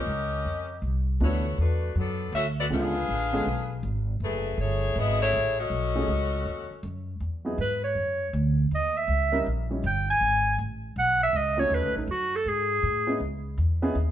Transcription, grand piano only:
0, 0, Header, 1, 2, 480
1, 0, Start_track
1, 0, Key_signature, 4, "major"
1, 0, Tempo, 375000
1, 1544, Time_signature, 4, 2, 24, 8
1, 18066, End_track
2, 0, Start_track
2, 0, Title_t, "Grand piano"
2, 0, Program_c, 0, 0
2, 1541, Note_on_c, 0, 57, 56
2, 1544, Note_on_c, 0, 52, 60
2, 1546, Note_on_c, 0, 66, 57
2, 1548, Note_on_c, 0, 59, 56
2, 1550, Note_on_c, 0, 62, 56
2, 1824, Note_off_c, 0, 57, 0
2, 1826, Note_off_c, 0, 52, 0
2, 1827, Note_off_c, 0, 66, 0
2, 1828, Note_off_c, 0, 59, 0
2, 1829, Note_off_c, 0, 62, 0
2, 3460, Note_on_c, 0, 50, 59
2, 3466, Note_on_c, 0, 56, 57
2, 3469, Note_on_c, 0, 61, 51
2, 3470, Note_on_c, 0, 59, 59
2, 3474, Note_on_c, 0, 65, 66
2, 3745, Note_off_c, 0, 50, 0
2, 3747, Note_off_c, 0, 56, 0
2, 3749, Note_off_c, 0, 61, 0
2, 3750, Note_off_c, 0, 59, 0
2, 3752, Note_off_c, 0, 65, 0
2, 4261, Note_on_c, 0, 50, 64
2, 4266, Note_on_c, 0, 56, 58
2, 4268, Note_on_c, 0, 59, 60
2, 4272, Note_on_c, 0, 61, 61
2, 4274, Note_on_c, 0, 68, 71
2, 4410, Note_off_c, 0, 50, 0
2, 4413, Note_off_c, 0, 56, 0
2, 4414, Note_off_c, 0, 59, 0
2, 4416, Note_off_c, 0, 61, 0
2, 4417, Note_off_c, 0, 68, 0
2, 7619, Note_on_c, 0, 57, 52
2, 7622, Note_on_c, 0, 63, 57
2, 7623, Note_on_c, 0, 54, 52
2, 7624, Note_on_c, 0, 61, 51
2, 7627, Note_on_c, 0, 68, 64
2, 7769, Note_off_c, 0, 57, 0
2, 7770, Note_off_c, 0, 63, 0
2, 7771, Note_off_c, 0, 54, 0
2, 7771, Note_off_c, 0, 61, 0
2, 7773, Note_off_c, 0, 68, 0
2, 9531, Note_on_c, 0, 54, 55
2, 9541, Note_on_c, 0, 63, 56
2, 9542, Note_on_c, 0, 59, 56
2, 9546, Note_on_c, 0, 64, 55
2, 9547, Note_on_c, 0, 68, 66
2, 9684, Note_off_c, 0, 54, 0
2, 9689, Note_off_c, 0, 63, 0
2, 9690, Note_off_c, 0, 59, 0
2, 9692, Note_off_c, 0, 64, 0
2, 9693, Note_off_c, 0, 68, 0
2, 11933, Note_on_c, 0, 61, 58
2, 11934, Note_on_c, 0, 55, 64
2, 11937, Note_on_c, 0, 63, 58
2, 11937, Note_on_c, 0, 70, 72
2, 11939, Note_on_c, 0, 64, 59
2, 12085, Note_off_c, 0, 61, 0
2, 12086, Note_off_c, 0, 55, 0
2, 12088, Note_off_c, 0, 63, 0
2, 12088, Note_off_c, 0, 64, 0
2, 12088, Note_off_c, 0, 70, 0
2, 12422, Note_on_c, 0, 63, 43
2, 12425, Note_on_c, 0, 55, 46
2, 12425, Note_on_c, 0, 61, 47
2, 12427, Note_on_c, 0, 64, 43
2, 12428, Note_on_c, 0, 73, 49
2, 12570, Note_off_c, 0, 63, 0
2, 12571, Note_off_c, 0, 55, 0
2, 12571, Note_off_c, 0, 61, 0
2, 12572, Note_off_c, 0, 64, 0
2, 12573, Note_off_c, 0, 73, 0
2, 14807, Note_on_c, 0, 57, 55
2, 14817, Note_on_c, 0, 61, 59
2, 14817, Note_on_c, 0, 63, 63
2, 14822, Note_on_c, 0, 66, 56
2, 14826, Note_on_c, 0, 69, 68
2, 15426, Note_off_c, 0, 57, 0
2, 15431, Note_off_c, 0, 61, 0
2, 15431, Note_off_c, 0, 63, 0
2, 15433, Note_off_c, 0, 66, 0
2, 15435, Note_off_c, 0, 69, 0
2, 16728, Note_on_c, 0, 63, 55
2, 16729, Note_on_c, 0, 59, 58
2, 16732, Note_on_c, 0, 61, 50
2, 16734, Note_on_c, 0, 64, 49
2, 16735, Note_on_c, 0, 68, 59
2, 16883, Note_off_c, 0, 59, 0
2, 16883, Note_off_c, 0, 63, 0
2, 16885, Note_off_c, 0, 61, 0
2, 16886, Note_off_c, 0, 64, 0
2, 16886, Note_off_c, 0, 68, 0
2, 17693, Note_on_c, 0, 61, 60
2, 17696, Note_on_c, 0, 59, 76
2, 17699, Note_on_c, 0, 64, 61
2, 17701, Note_on_c, 0, 63, 62
2, 17704, Note_on_c, 0, 68, 82
2, 17845, Note_off_c, 0, 61, 0
2, 17847, Note_off_c, 0, 59, 0
2, 17848, Note_off_c, 0, 64, 0
2, 17849, Note_off_c, 0, 63, 0
2, 17851, Note_off_c, 0, 68, 0
2, 18066, End_track
0, 0, End_of_file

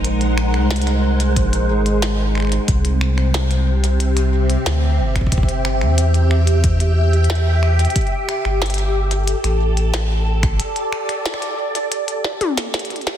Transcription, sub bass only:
0, 0, Header, 1, 2, 480
1, 0, Start_track
1, 0, Tempo, 659341
1, 33, Time_signature, 4, 2, 24, 8
1, 9589, End_track
2, 0, Start_track
2, 0, Title_t, "Sub bass"
2, 0, Program_c, 0, 38
2, 0, Note_on_c, 0, 34, 93
2, 393, Note_on_c, 0, 36, 87
2, 404, Note_off_c, 0, 34, 0
2, 994, Note_on_c, 0, 34, 98
2, 1005, Note_off_c, 0, 36, 0
2, 1233, Note_on_c, 0, 32, 93
2, 1244, Note_off_c, 0, 34, 0
2, 1886, Note_off_c, 0, 32, 0
2, 1953, Note_on_c, 0, 36, 96
2, 3326, Note_off_c, 0, 36, 0
2, 3393, Note_on_c, 0, 38, 96
2, 3633, Note_on_c, 0, 31, 77
2, 3644, Note_off_c, 0, 38, 0
2, 4232, Note_on_c, 0, 40, 87
2, 4243, Note_off_c, 0, 31, 0
2, 5726, Note_off_c, 0, 40, 0
2, 6153, Note_on_c, 0, 31, 88
2, 6806, Note_off_c, 0, 31, 0
2, 6873, Note_on_c, 0, 33, 99
2, 7713, Note_off_c, 0, 33, 0
2, 9589, End_track
0, 0, End_of_file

